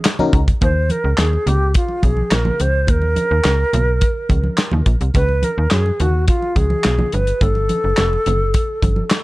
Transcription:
0.05 snare loud
0.05 clap medium
0.05 closed hi-hat loud
0.05 muted conga soft
0.19 0.40 C#4 loud
0.19 0.40 D#4 loud
0.19 0.40 F#4 medium
0.19 0.41 A#4 loud
0.19 high conga medium
0.19 low conga medium
0.33 0.53 C#2 medium
0.33 kick loud
0.33 closed hi-hat medium
0.48 kick loud
0.48 closed hi-hat medium
0.61 0.91 D#2 loud
0.61 0.93 C5 loud
0.61 kick loud
0.61 closed hi-hat medium
0.61 low conga medium
0.89 1.21 A#4 medium
0.89 closed hi-hat medium
0.89 high conga medium
1.04 1.14 C#2 medium
1.18 1.38 D#2 medium
1.18 1.49 G#4 medium
1.18 snare medium
1.18 clap medium
1.18 closed hi-hat medium
1.33 muted conga soft
1.47 1.76 C#2 loud
1.47 1.75 G4 medium
1.47 closed hi-hat medium
1.47 low conga medium
1.74 2.06 F4 medium
1.74 kick loud
1.74 closed hi-hat loud
1.88 muted conga soft
2.03 2.23 B1 medium
2.03 2.35 G#4 medium
2.03 kick medium
2.03 closed hi-hat medium
2.03 high conga medium
2.17 high conga medium
2.31 2.51 A#1 medium
2.31 2.63 A#4 medium
2.31 snare loud
2.31 clap medium
2.31 closed hi-hat loud
2.45 muted conga soft
2.45 high conga medium
2.45 low conga medium
2.60 2.90 C#2 medium
2.60 2.91 C5 medium
2.60 closed hi-hat medium
2.60 high conga soft
2.87 3.18 D#2 loud
2.87 4.87 A#4 loud
2.87 kick loud
2.87 closed hi-hat loud
2.87 low conga medium
3.02 muted conga soft
3.16 closed hi-hat medium
3.16 high conga medium
3.31 3.41 D#2 medium
3.44 3.65 C#2 medium
3.44 snare medium
3.44 clap medium
3.44 closed hi-hat medium
3.44 muted conga soft
3.73 4.03 B1 loud
3.73 closed hi-hat medium
3.73 low conga medium
4.01 kick loud
4.01 closed hi-hat medium
4.01 muted conga soft
4.29 4.49 C#2 medium
4.29 kick medium
4.29 closed hi-hat medium
4.29 high conga medium
4.43 high conga medium
4.57 snare loud
4.57 clap medium
4.57 closed hi-hat loud
4.57 muted conga soft
4.72 4.82 D#2 medium
4.72 high conga medium
4.72 low conga medium
4.86 4.96 A#1 medium
4.86 kick medium
4.86 closed hi-hat medium
4.86 high conga soft
5.01 5.11 C2 medium
5.01 closed hi-hat soft
5.14 5.44 C#2 loud
5.14 5.46 B4 loud
5.14 kick loud
5.14 closed hi-hat medium
5.14 muted conga soft
5.14 low conga medium
5.28 muted conga soft
5.42 5.74 A#4 loud
5.42 closed hi-hat medium
5.42 high conga medium
5.58 5.67 D#2 medium
5.71 5.91 F#2 medium
5.71 6.02 G#4 medium
5.71 snare medium
5.71 clap medium
5.71 closed hi-hat medium
5.86 muted conga soft
6.00 6.29 D#2 medium
6.00 6.28 F#4 loud
6.00 closed hi-hat medium
6.00 low conga medium
6.28 6.58 F4 medium
6.28 kick loud
6.28 closed hi-hat loud
6.28 muted conga soft
6.42 muted conga soft
6.56 6.76 C#2 medium
6.56 7.15 G#4 medium
6.56 kick medium
6.56 closed hi-hat medium
6.56 high conga medium
6.70 high conga medium
6.84 7.05 B1 medium
6.84 snare loud
6.84 clap medium
6.84 closed hi-hat medium
6.99 muted conga soft
6.99 high conga medium
6.99 low conga medium
7.12 7.33 G1 medium
7.12 7.44 B4 medium
7.12 closed hi-hat medium
7.12 high conga soft
7.27 closed hi-hat soft
7.41 7.71 G1 loud
7.41 9.24 A4 loud
7.41 kick loud
7.41 closed hi-hat medium
7.41 muted conga soft
7.41 low conga medium
7.55 muted conga soft
7.69 closed hi-hat medium
7.69 high conga medium
7.84 7.94 F#1 medium
7.97 8.18 F1 loud
7.97 snare medium
7.97 clap medium
7.97 closed hi-hat medium
7.97 muted conga soft
8.13 muted conga soft
8.26 8.56 F#1 medium
8.26 closed hi-hat medium
8.26 low conga medium
8.54 kick loud
8.54 closed hi-hat loud
8.54 muted conga soft
8.82 9.02 G1 medium
8.82 kick medium
8.82 closed hi-hat medium
8.82 high conga medium
8.96 high conga medium
9.10 snare loud
9.10 clap medium
9.10 closed hi-hat loud

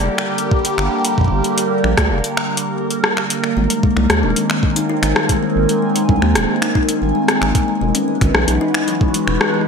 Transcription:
0.00 3.57 D3 medium
0.00 3.57 G3 medium
0.00 7.81 A#3 medium
0.00 3.57 G4 medium
0.00 7.81 A#4 medium
0.18 finger snap medium
0.38 closed hi-hat medium
0.51 kick loud
0.65 closed hi-hat medium
0.78 0.89 G1 loud
0.78 finger snap medium
1.05 closed hi-hat medium
1.18 kick medium
1.21 kick medium
1.24 kick medium
1.28 1.42 G1 medium
1.28 kick medium
1.44 closed hi-hat medium
1.58 closed hi-hat medium
1.84 1.95 A#1 medium
1.84 finger snap soft
1.98 2.12 D2 loud
1.98 finger snap soft
1.98 kick loud
1.98 cross-stick loud
1.98 closed hi-hat medium
2.11 2.22 F1 medium
2.24 closed hi-hat medium
2.37 finger snap medium
2.57 closed hi-hat medium
2.90 closed hi-hat medium
3.04 cross-stick loud
3.17 finger snap medium
3.30 closed hi-hat medium
3.44 finger snap soft
3.57 3.68 G#1 loud
3.57 7.81 D#3 medium
3.57 3.64 G#3 medium
3.70 closed hi-hat loud
3.83 3.91 G#3 medium
3.83 kick loud
3.97 4.07 C2 medium
3.97 4.04 G#3 medium
3.97 finger snap soft
4.10 4.25 D#2 medium
4.10 4.14 G#3 medium
4.10 7.81 C4 medium
4.10 cross-stick loud
4.10 closed hi-hat medium
4.19 9.51 G#5 medium
4.23 4.34 D#1 medium
4.23 4.28 D4 medium
4.36 4.44 G#3 medium
4.36 closed hi-hat medium
4.50 finger snap medium
4.63 kick loud
4.76 4.84 D#4 medium
4.76 closed hi-hat medium
4.90 4.97 D#4 loud
5.03 5.14 G#1 medium
5.03 finger snap medium
5.03 closed hi-hat medium
5.16 5.24 G3 medium
5.16 cross-stick loud
5.29 5.37 G#3 medium
5.29 kick loud
5.29 closed hi-hat loud
5.43 5.50 G#3 medium
5.56 5.67 G#1 medium
5.69 5.77 G#3 medium
5.69 closed hi-hat medium
5.82 5.90 G#3 medium
5.96 6.00 G#3 medium
5.96 closed hi-hat medium
6.09 6.20 C2 medium
6.09 6.13 D4 medium
6.09 kick loud
6.22 6.37 D#2 medium
6.22 6.30 G#3 medium
6.22 finger snap soft
6.35 6.46 D#1 medium
6.35 cross-stick loud
6.35 closed hi-hat medium
6.62 6.70 D#4 medium
6.62 finger snap medium
6.62 closed hi-hat medium
6.75 6.83 D#4 loud
6.75 kick loud
6.89 closed hi-hat medium
7.02 7.13 G#1 medium
7.02 7.09 G3 medium
7.15 7.23 G#3 medium
7.28 7.36 G#3 medium
7.28 cross-stick loud
7.28 closed hi-hat medium
7.42 7.53 G#1 loud
7.42 finger snap medium
7.55 7.63 G#3 medium
7.55 kick loud
7.55 closed hi-hat medium
7.68 7.76 G#3 medium
7.81 7.92 E1 loud
7.81 9.68 E3 medium
7.81 7.86 G#3 medium
7.89 9.68 G#3 medium
7.89 9.68 B4 medium
7.95 9.68 B3 medium
7.95 7.99 C#4 medium
7.95 closed hi-hat loud
8.07 8.16 G#3 medium
8.07 9.68 F#4 medium
8.21 8.32 G#1 medium
8.21 finger snap soft
8.21 kick loud
8.21 closed hi-hat medium
8.35 8.45 B1 medium
8.35 cross-stick loud
8.48 8.59 B1 medium
8.48 8.55 D#4 medium
8.48 closed hi-hat loud
8.61 8.69 D#4 loud
8.74 finger snap medium
8.88 8.95 F#3 medium
8.88 closed hi-hat medium
9.01 9.09 G#3 medium
9.01 kick loud
9.14 9.22 G#3 medium
9.14 closed hi-hat medium
9.28 9.38 E1 medium
9.28 finger snap medium
9.41 9.48 G#3 medium
9.41 cross-stick loud
9.54 9.62 G#3 medium

